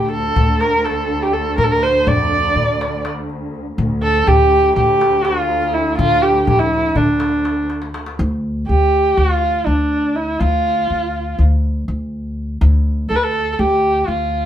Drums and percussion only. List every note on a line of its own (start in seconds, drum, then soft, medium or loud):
0.01 darbuka ka soft
0.12 darbuka ka soft
0.36 darbuka dum medium
0.61 darbuka tek medium
0.86 darbuka tek medium
1.10 darbuka ka soft
1.58 darbuka dum medium
1.83 darbuka ka soft
2.07 darbuka dum medium
2.20 darbuka ka soft
2.32 darbuka ka soft
2.57 darbuka dum medium
2.81 darbuka tek medium
3.05 darbuka tek medium
3.29 darbuka ka soft
3.55 darbuka ka soft
3.79 darbuka dum medium
4.02 darbuka ka soft
4.28 darbuka dum medium
4.40 darbuka ka soft
4.53 darbuka ka soft
4.77 darbuka dum medium
5.01 darbuka tek medium
5.25 darbuka tek medium
5.75 darbuka ka soft
5.99 darbuka dum medium
6.23 darbuka ka soft
6.47 darbuka dum medium
6.60 darbuka ka soft
6.71 darbuka ka soft
6.96 darbuka dum medium
7.20 darbuka tek medium
7.45 darbuka tek medium
7.70 darbuka tek soft
7.82 darbuka ka medium
7.94 darbuka tek medium
8.06 darbuka ka medium